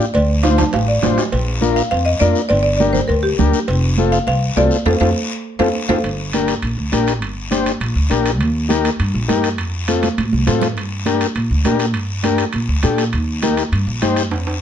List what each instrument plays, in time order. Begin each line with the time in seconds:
Already playing: marimba D5
0.00 short guiro
0.14 upright bass D2, marimba D5, cowbell, high conga, long guiro
0.43 transistor combo organ D4 F4 C5, marimba F5, high conga, high timbale, short guiro
0.58 marimba A5, low conga, high timbale, short guiro
0.73 upright bass A1, marimba F5, cowbell, high conga, low timbale, long guiro
0.88 marimba D5
1.02 upright bass A1, transistor combo organ D4 F4 C5, high conga, low conga, low timbale, short guiro
1.18 low timbale, short guiro
1.32 upright bass A#1, cowbell, high conga, long guiro
1.61 transistor combo organ D4 F4 A#4, high conga, short guiro
1.76 marimba F5, short guiro
1.91 upright bass F2, marimba F5, cowbell, high conga, long guiro
2.05 marimba D#5
2.20 upright bass F2, transistor combo organ D4 F4 A#4, marimba D5, high conga, short guiro
2.35 short guiro
2.49 upright bass G1, marimba D5, cowbell, high conga, long guiro
2.63 marimba D5
2.77 transistor combo organ D4 G4 A#4, marimba D5, high conga, short guiro
2.93 marimba C5, low conga, short guiro
3.08 upright bass D2, marimba A#4, cowbell, high conga, long guiro
3.23 marimba G4
3.38 upright bass D2, transistor combo organ D4 G4 A#4, high conga, low conga, short guiro
3.53 short guiro
3.68 upright bass F1, cowbell, high conga, long guiro
3.98 transistor combo organ C4 F4 A4, high conga, short guiro
4.12 marimba F5, short guiro
4.27 upright bass C2, marimba F5, cowbell, high conga, long guiro
4.56 upright bass C2, transistor combo organ C4 F4 A4, marimba D5, high conga, low timbale, short guiro
4.71 short guiro
4.86 upright bass F2, transistor combo organ C4 F4 A4, marimba A4 C5 F5, high conga, high timbale, long guiro
5.00 upright bass F2, transistor combo organ C4 F4 A4, marimba A4 C5 F5, high conga, high timbale, long guiro
5.59 upright bass F2, transistor combo organ C4 F4 A4, marimba A4 C5 F5, high conga, high timbale, long guiro
5.89 upright bass F2, transistor combo organ C4 F4 A4, marimba A4 C5 F5, high conga, high timbale, long guiro
6.04 upright bass G1, high conga, high timbale, long guiro
6.33 transistor combo organ D4 G4 A#4, high conga, high timbale, short guiro
6.48 high timbale, short guiro
6.62 upright bass A#1, high conga, high timbale, long guiro
6.77 upright bass D2
6.92 upright bass A#1, transistor combo organ D4 G4 A#4, high conga, high timbale, short guiro
7.07 high timbale, short guiro
7.22 upright bass G1, high conga, high timbale, long guiro
7.51 transistor combo organ D4 G4 C5, high conga, high timbale, short guiro
7.66 high timbale, short guiro
7.80 upright bass A#1, high conga, high timbale, long guiro
7.95 upright bass D2
8.10 upright bass A#1, transistor combo organ D4 G4 A#4, high conga, high timbale, short guiro
8.26 high timbale, short guiro
8.40 upright bass D#2, high conga, high timbale, long guiro
8.69 transistor combo organ D#4 G4 A#4, high conga, high timbale, short guiro
8.85 high timbale, short guiro
9.00 upright bass G2, high conga, high timbale, long guiro
9.14 upright bass A#1
9.28 upright bass G2, transistor combo organ D#4 G4 A#4, high conga, high timbale, low timbale, short guiro
9.44 high timbale, short guiro
9.58 upright bass F2, high conga, high timbale, long guiro
9.88 transistor combo organ C4 F4 A4, high conga, high timbale, short guiro
10.03 high conga, high timbale, short guiro
10.18 upright bass A2, high conga, high timbale, long guiro
10.33 upright bass C2, high conga
10.47 upright bass A2, transistor combo organ C4 F4 A4, low conga, high timbale, low timbale, short guiro
10.62 low conga, high timbale, short guiro
10.76 upright bass G2, high conga, high timbale, long guiro
11.06 transistor combo organ D4 G4 A#4, high conga, high timbale, short guiro
11.21 high timbale, short guiro
11.35 upright bass A#2, high conga, high timbale, long guiro
11.51 upright bass D2
11.65 upright bass A#2, transistor combo organ D4 G4 A#4, high conga, high timbale, low timbale, short guiro
11.79 high timbale, short guiro
11.94 upright bass G2, high conga, high timbale, long guiro
12.23 transistor combo organ D4 G4 A#4, high conga, high timbale, short guiro
12.38 high timbale, short guiro
12.53 upright bass A#2, high conga, high timbale, long guiro
12.68 upright bass D2
12.83 upright bass A#2, transistor combo organ D4 G4 A4, high conga, high timbale, short guiro
12.98 high timbale, short guiro
13.13 upright bass D#2, high conga, high timbale, long guiro
13.42 transistor combo organ D#4 G4 A#4, high conga, high timbale, short guiro
13.57 high timbale, short guiro
13.72 upright bass G2, high conga, high timbale, long guiro
13.87 upright bass A#1
14.02 upright bass G2, transistor combo organ D#4 G4 C5, high conga, high timbale, short guiro
14.16 high timbale, short guiro
14.31 upright bass F2, high conga, high timbale, long guiro
14.47 high timbale